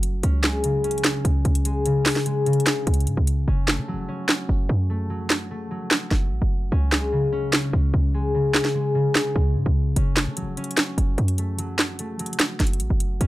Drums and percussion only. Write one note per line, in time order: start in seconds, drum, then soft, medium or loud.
0.03 closed hi-hat medium
0.23 closed hi-hat medium
0.44 snare loud
0.44 clap medium
0.64 closed hi-hat medium
0.84 closed hi-hat medium
0.91 closed hi-hat medium
0.98 closed hi-hat medium
1.04 snare loud
1.04 clap medium
1.04 closed hi-hat medium
1.25 closed hi-hat medium
1.45 closed hi-hat soft
1.55 closed hi-hat medium
1.65 closed hi-hat medium
1.86 closed hi-hat medium
2.06 snare loud
2.06 clap medium
2.06 open hi-hat medium
2.16 snare medium
2.26 closed hi-hat medium
2.46 closed hi-hat medium
2.53 closed hi-hat medium
2.60 closed hi-hat medium
2.66 snare loud
2.66 clap medium
2.66 closed hi-hat medium
2.87 closed hi-hat medium
2.94 closed hi-hat medium
3.00 closed hi-hat soft
3.07 closed hi-hat medium
3.27 closed hi-hat medium
3.68 snare loud
3.68 clap medium
4.29 snare loud
4.29 clap medium
5.30 snare loud
5.30 clap medium
5.91 snare loud
5.91 clap medium
6.11 snare medium
6.92 snare loud
6.92 clap medium
7.53 snare loud
7.53 clap medium
8.54 snare loud
8.54 clap medium
8.65 snare medium
9.15 snare loud
9.15 clap medium
9.96 closed hi-hat medium
10.17 snare loud
10.17 clap medium
10.37 closed hi-hat medium
10.57 closed hi-hat medium
10.64 closed hi-hat medium
10.71 closed hi-hat medium
10.77 snare loud
10.77 clap medium
10.77 closed hi-hat medium
10.98 closed hi-hat medium
11.18 closed hi-hat soft
11.28 closed hi-hat medium
11.38 closed hi-hat medium
11.59 closed hi-hat medium
11.79 snare loud
11.79 clap medium
11.99 closed hi-hat medium
12.19 closed hi-hat medium
12.26 closed hi-hat medium
12.33 closed hi-hat medium
12.39 snare loud
12.39 clap medium
12.39 closed hi-hat medium
12.60 snare medium
12.60 closed hi-hat medium
12.67 closed hi-hat medium
12.73 closed hi-hat medium
12.80 closed hi-hat medium
13.00 closed hi-hat medium
13.21 closed hi-hat medium